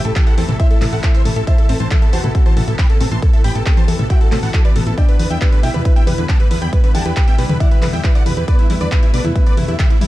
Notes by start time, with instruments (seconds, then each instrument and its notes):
Already playing: analog synth pad C3 E3 A3 E4, grand piano G4 G5
0.05 fm bass A1, supersaw synth A4, digital synth lead A4, synth pluck E5, closed hi-hat
0.16 synth pluck E3, supersaw synth A4, digital synth lead A4, kick, clap, closed hi-hat
0.27 synth pluck E4, supersaw synth A4 F#5, digital synth lead F#5, closed hi-hat
0.38 fm bass E2, synth pluck C4, supersaw synth A4, digital synth lead A4, open hi-hat
0.49 fm bass A1, synth pluck E3, supersaw synth A4, digital synth lead A4, mid tom
0.60 synth pluck E3, grand piano E4 E5, supersaw synth C5 E5, digital synth lead E5, kick, closed hi-hat
0.71 supersaw synth A4, digital synth lead A4, synth pluck E5, closed hi-hat
0.82 fm bass A1, synth pluck E3, supersaw synth A4, digital synth lead A4, clap, open hi-hat, mid tom
0.92 fm bass A1, synth pluck E4, supersaw synth A4 F#5, digital synth lead F#5, open hi-hat
1.03 synth pluck C4, supersaw synth A4, digital synth lead A4, kick, clap, closed hi-hat
1.14 synth pluck E3, supersaw synth C5 E5, digital synth lead E5, closed hi-hat
1.25 fm bass A1, synth pluck E3, supersaw synth A4, digital synth lead A4, open hi-hat, mid tom
1.36 fm bass A1, supersaw synth A4, digital synth lead A4, synth pluck E5, closed hi-hat
1.47 synth pluck E3, analog synth pad B3, grand piano E4 E5, supersaw synth C5 A5, digital synth lead A5, kick, closed hi-hat
1.58 synth pluck E4, digital synth lead A4, supersaw synth A4, closed hi-hat
1.69 fm bass A1, synth pluck C4, digital synth lead A4, supersaw synth A4, open hi-hat
1.80 fm bass A1, synth pluck E3, supersaw synth C5 A5, digital synth lead A5, closed hi-hat
1.91 synth pluck E3, supersaw synth A4, digital synth lead A4, kick, clap, closed hi-hat
2.02 supersaw synth A4, digital synth lead A4, synth pluck E5, closed hi-hat
2.13 fm bass E2, synth pluck E3, grand piano F#4 F#5, supersaw synth C5 A5, digital synth lead A5, open hi-hat
2.24 fm bass A1, synth pluck E4, supersaw synth A4, digital synth lead A4, closed hi-hat, mid tom
2.35 synth pluck C4, supersaw synth A4, digital synth lead A4, kick, closed hi-hat
2.46 synth pluck E3, supersaw synth C5 A5, digital synth lead A5, closed hi-hat
2.57 fm bass A1, synth pluck E3, supersaw synth A4, digital synth lead A4, open hi-hat, mid tom
2.68 fm bass A1, digital synth lead A4, supersaw synth A4, synth pluck E5, closed hi-hat
2.79 synth pluck E3, supersaw synth G5 B5, digital synth lead B5, kick, clap, closed hi-hat
2.90 synth pluck E4, digital synth lead A4, supersaw synth A4, closed hi-hat
3.00 fm bass A1, synth pluck C4, digital synth lead A4, supersaw synth A4, open hi-hat
3.12 fm bass A1, synth pluck E3, supersaw synth A5 C6, digital synth lead C6, closed hi-hat
3.22 synth pluck E3, digital synth lead A4, supersaw synth A4, kick, closed hi-hat
3.33 digital synth lead A4, supersaw synth A4, synth pluck E5, closed hi-hat
3.44 fm bass A1, synth pluck E3, grand piano G4 G5, supersaw synth G5 B5, digital synth lead B5, open hi-hat
3.55 fm bass A1, synth pluck E4, digital synth lead A4, supersaw synth A4, closed hi-hat
3.66 synth pluck C4, supersaw synth A4, kick, clap, closed hi-hat
3.77 synth pluck E3, supersaw synth C5 A5, digital synth lead A5, closed hi-hat
3.88 fm bass E2, synth pluck E3, supersaw synth A4, digital synth lead A4, open hi-hat
3.99 fm bass A1, digital synth lead A4, supersaw synth A4, synth pluck E5, closed hi-hat, mid tom
4.10 synth pluck E3, grand piano F#4 F#5, supersaw synth E5 G5, digital synth lead G5, kick, closed hi-hat
4.21 synth pluck E4, digital synth lead A4, supersaw synth A4, closed hi-hat
4.32 fm bass A2, synth pluck C4, supersaw synth A4, digital synth lead A4, clap, open hi-hat, mid tom
4.43 fm bass A1, synth pluck E3, supersaw synth A4 F#5, digital synth lead F#5, open hi-hat
4.54 synth pluck E3, supersaw synth A4, digital synth lead A4, kick, clap, closed hi-hat
4.65 supersaw synth B4 D5, digital synth lead D5, synth pluck E5, closed hi-hat
4.76 fm bass A1, synth pluck E3, supersaw synth A4, digital synth lead A4, open hi-hat, mid tom
4.87 fm bass A1, synth pluck E4, digital synth lead A4, supersaw synth A4, closed hi-hat
4.97 analog synth pad D3 G3 E4, synth pluck D3, grand piano D4 D5, supersaw synth E5 G5, digital synth lead G5, kick, closed hi-hat
5.09 synth pluck G4, supersaw synth B4, digital synth lead B4, closed hi-hat
5.19 fm bass E2, synth pluck D3, digital synth lead B4, supersaw synth B4, open hi-hat
5.30 fm bass E2, synth pluck B3, supersaw synth E5 G5, digital synth lead G5, closed hi-hat
5.41 synth pluck G3, supersaw synth B4, digital synth lead B4, kick, clap, closed hi-hat
5.52 synth pluck D3, digital synth lead B4, supersaw synth B4, closed hi-hat
5.63 fm bass B1, synth pluck D3, grand piano E4 E5, supersaw synth E5 G5, digital synth lead G5, open hi-hat
5.74 fm bass E2, synth pluck G4, supersaw synth B4, digital synth lead B4, closed hi-hat, mid tom
5.85 synth pluck D3, digital synth lead B4, supersaw synth B4, kick, closed hi-hat
5.96 synth pluck B3, supersaw synth E5 G5, digital synth lead G5, closed hi-hat
6.07 fm bass E2, synth pluck G3, supersaw synth B4, digital synth lead B4, open hi-hat, mid tom
6.18 fm bass E2, synth pluck D3, digital synth lead B4, supersaw synth B4, closed hi-hat
6.29 synth pluck D3, supersaw synth F#5 A5, digital synth lead A5, kick, clap, closed hi-hat
6.40 synth pluck G4, digital synth lead B4, supersaw synth B4, closed hi-hat
6.51 fm bass E2, synth pluck D3, supersaw synth B4, digital synth lead B4, open hi-hat
6.62 fm bass E2, synth pluck B3, supersaw synth G5 B5, digital synth lead B5, closed hi-hat
6.73 synth pluck G3, supersaw synth B4, digital synth lead B4, kick, closed hi-hat
6.84 synth pluck D3, supersaw synth B4, digital synth lead B4, closed hi-hat
6.95 fm bass E2, synth pluck D3, grand piano G4 G5, supersaw synth F#5 A5, digital synth lead A5, open hi-hat
7.06 fm bass E2, synth pluck G4, supersaw synth B4, digital synth lead B4, closed hi-hat
7.17 synth pluck D3, supersaw synth B4, digital synth lead B4, kick, clap, closed hi-hat
7.27 synth pluck B3, supersaw synth E5 G5, digital synth lead G5, closed hi-hat
7.38 fm bass B1, synth pluck G3, supersaw synth B4, digital synth lead B4, open hi-hat
7.49 fm bass E2, synth pluck D3, supersaw synth B4, digital synth lead B4, closed hi-hat, mid tom
7.60 synth pluck D3, grand piano E4 E5, supersaw synth D5 F#5, digital synth lead F#5, kick, closed hi-hat
7.71 synth pluck G4, supersaw synth B4, digital synth lead B4, closed hi-hat
7.82 fm bass E2, synth pluck D3, supersaw synth B4, digital synth lead B4, clap, open hi-hat, mid tom
7.93 fm bass E2, synth pluck B3, supersaw synth E5 G5, digital synth lead G5, open hi-hat
8.04 synth pluck G3, digital synth lead B4, supersaw synth B4, kick, clap, closed hi-hat
8.15 synth pluck D3, supersaw synth D5 F#5, digital synth lead F#5, closed hi-hat
8.26 fm bass E2, synth pluck D3, supersaw synth B4, digital synth lead B4, open hi-hat, mid tom
8.37 fm bass E2, synth pluck G4, supersaw synth B4, digital synth lead B4, closed hi-hat
8.48 synth pluck D3, analog synth pad A3, grand piano B3 B4, supersaw synth B4 D5, digital synth lead D5, kick, closed hi-hat
8.59 synth pluck B3, digital synth lead E4, supersaw synth E4, closed hi-hat
8.70 fm bass E2, synth pluck G3, supersaw synth E4, digital synth lead E4, open hi-hat
8.81 fm bass E2, synth pluck D3, supersaw synth B4 D5, digital synth lead D5, closed hi-hat
8.92 synth pluck D3, digital synth lead E4, supersaw synth E4, kick, clap, closed hi-hat
9.03 digital synth lead E4, supersaw synth E4, synth pluck G4, closed hi-hat
9.14 fm bass B1, synth pluck D3, grand piano B3 B4, supersaw synth B4 D5, digital synth lead D5, open hi-hat
9.25 fm bass E2, synth pluck B3, digital synth lead E4, supersaw synth E4, closed hi-hat, mid tom
9.36 synth pluck G3, digital synth lead E4, supersaw synth E4, kick, closed hi-hat
9.46 synth pluck D3, supersaw synth B4 D5, digital synth lead D5, closed hi-hat
9.57 fm bass E2, synth pluck D3, digital synth lead E4, supersaw synth E4, open hi-hat, mid tom
9.68 fm bass E2, digital synth lead E4, supersaw synth E4, synth pluck G4, closed hi-hat
9.79 synth pluck D3, supersaw synth G4 E5, digital synth lead E5, kick, clap, closed hi-hat
9.90 synth pluck B3, supersaw synth E4, digital synth lead E4, closed hi-hat
10.01 fm bass E2, synth pluck G3, supersaw synth E4, digital synth lead E4, open hi-hat